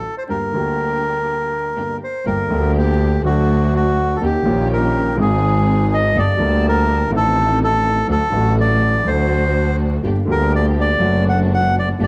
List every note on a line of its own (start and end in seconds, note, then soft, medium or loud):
0.00 0.15 A4 medium
0.18 0.23 C5 medium
0.28 0.50 G1 medium
0.28 0.50 G2 soft
0.28 0.50 D3 soft
0.28 0.50 G3 soft
0.28 0.49 A#3 soft
0.28 0.50 A#3 soft
0.28 0.49 D4 soft
0.28 0.49 G4 medium
0.28 0.50 G4 soft
0.28 1.97 A#4 medium
0.53 1.71 D2 medium
0.53 1.71 D3 medium
0.53 1.70 G3 medium
0.53 1.70 A#3 medium
0.53 1.71 A#3 medium
0.53 1.70 D4 medium
0.53 1.70 G4 medium
0.53 1.72 G4 medium
1.75 1.98 G1 medium
1.75 1.98 G2 soft
1.75 1.98 D3 soft
1.75 1.97 G3 soft
1.75 1.97 A#3 soft
1.75 1.98 A#3 soft
1.75 1.97 D4 soft
1.75 1.97 G4 soft
1.75 1.98 G4 soft
2.04 2.26 C5 medium
2.25 2.47 G1 medium
2.25 2.47 G1 soft
2.25 2.47 G2 medium
2.25 2.47 D3 soft
2.25 2.47 G3 soft
2.25 2.46 A#3 medium
2.25 2.47 A#3 soft
2.25 2.47 D4 soft
2.25 2.47 G4 medium
2.25 2.72 A#4 medium
2.49 3.20 D2 loud
2.49 3.20 D2 medium
2.49 2.51 D3 medium
2.49 3.21 D3 medium
2.49 3.20 G3 medium
2.49 3.20 A#3 medium
2.49 3.21 A#3 medium
2.49 3.20 D4 medium
2.49 3.20 G4 medium
2.53 3.22 G4 medium
2.78 3.22 G4 medium
3.22 4.16 D2 medium
3.22 4.17 D2 medium
3.22 3.24 D3 medium
3.22 4.17 D3 medium
3.22 4.16 F#3 medium
3.22 4.16 A3 medium
3.22 4.17 A3 medium
3.22 4.16 D4 medium
3.22 4.16 F#4 medium
3.22 3.74 F#4 medium
3.26 4.18 F#4 medium
3.76 4.17 F#4 medium
4.16 4.22 A4 medium
4.20 4.41 D#2 medium
4.20 4.42 D#2 medium
4.20 4.42 D#3 medium
4.20 4.41 A#3 soft
4.20 4.41 C#4 soft
4.20 4.42 C#4 medium
4.20 4.42 D#4 medium
4.20 4.41 G4 medium
4.20 4.42 G4 medium
4.25 4.68 G4 medium
4.43 5.14 A#1 loud
4.43 5.14 A#2 medium
4.43 5.13 D#3 medium
4.43 5.14 A#3 medium
4.43 5.14 C#4 medium
4.43 5.15 C#4 medium
4.43 5.14 D#4 medium
4.43 5.15 G4 loud
4.47 5.15 G4 medium
4.73 5.16 A#4 medium
5.15 6.09 G#1 medium
5.15 6.09 G#1 loud
5.15 6.09 G#2 medium
5.15 6.08 D#3 medium
5.15 6.09 G#3 medium
5.15 6.09 C4 loud
5.15 6.10 C4 medium
5.15 6.10 D#4 medium
5.15 6.10 G#4 loud
5.20 6.10 G#4 medium
5.20 5.94 G#4 loud
5.94 6.17 D#5 loud
6.15 6.35 G1 medium
6.15 6.35 G2 medium
6.15 6.35 G3 soft
6.15 6.35 A#3 medium
6.15 6.35 A#3 soft
6.15 6.35 D4 soft
6.15 6.35 G4 medium
6.15 6.35 A4 medium
6.19 6.66 D5 loud
6.37 7.08 D2 loud
6.37 7.08 D2 medium
6.37 7.08 D3 medium
6.37 7.07 G3 medium
6.37 7.07 A#3 medium
6.37 7.08 A#3 medium
6.37 7.08 D4 medium
6.37 7.08 G4 medium
6.37 7.08 A5 medium
6.41 7.09 A#4 medium
6.69 7.11 A#4 medium
7.10 8.04 A1 loud
7.10 8.04 A1 medium
7.10 8.04 A2 medium
7.10 8.03 D#3 medium
7.10 8.04 A3 medium
7.10 8.04 C4 medium
7.10 8.03 D#4 medium
7.10 8.04 A4 loud
7.10 8.05 A4 medium
7.17 7.59 A4 loud
7.64 8.07 A4 loud
8.08 8.29 D2 medium
8.08 8.28 D3 medium
8.08 8.29 F#3 soft
8.08 8.28 A3 medium
8.08 8.29 A3 soft
8.08 8.29 D4 medium
8.08 8.29 F#4 medium
8.08 8.56 A4 loud
8.30 9.02 A1 medium
8.30 9.02 A1 loud
8.30 9.02 A2 medium
8.30 9.01 D3 medium
8.30 9.02 F#3 medium
8.30 9.02 A3 medium
8.30 9.02 D4 medium
8.30 9.02 F#4 loud
8.34 9.03 F#4 medium
8.60 9.09 D5 loud
9.03 9.99 D2 medium
9.03 10.00 D2 loud
9.03 9.99 D3 medium
9.03 9.98 F#3 medium
9.03 9.99 A3 medium
9.03 9.99 D4 medium
9.03 9.99 F#4 loud
9.03 9.76 C5 medium
9.08 10.00 F#4 medium
10.02 10.24 G1 medium
10.02 10.24 G2 medium
10.02 10.24 D3 medium
10.02 10.24 G3 soft
10.02 10.24 A#3 soft
10.02 10.24 A#3 medium
10.02 10.24 D4 soft
10.02 10.24 G4 medium
10.02 10.24 G4 soft
10.25 10.98 D2 medium
10.25 10.97 D3 medium
10.25 10.97 G3 medium
10.25 10.98 A#3 medium
10.25 10.98 D4 medium
10.25 10.98 G4 medium
10.29 10.99 G4 medium
10.29 10.53 A#4 loud
10.55 10.66 D5 medium
10.81 11.25 D5 loud
10.99 11.94 F#1 loud
10.99 11.94 F#2 medium
10.99 11.93 D3 medium
10.99 11.94 F#3 medium
10.99 11.94 A3 medium
10.99 11.94 D4 medium
10.99 11.94 F#4 medium
10.99 11.95 F#4 medium
11.29 11.40 F#5 medium
11.54 11.75 F#5 loud
11.79 11.89 D5 loud
11.99 12.07 G1 medium
11.99 12.07 G2 medium
11.99 12.07 D3 medium
11.99 12.07 G3 soft
11.99 12.07 A#3 medium
11.99 12.07 A#3 soft
11.99 12.07 D4 medium
11.99 12.07 G4 medium
12.03 12.07 D5 loud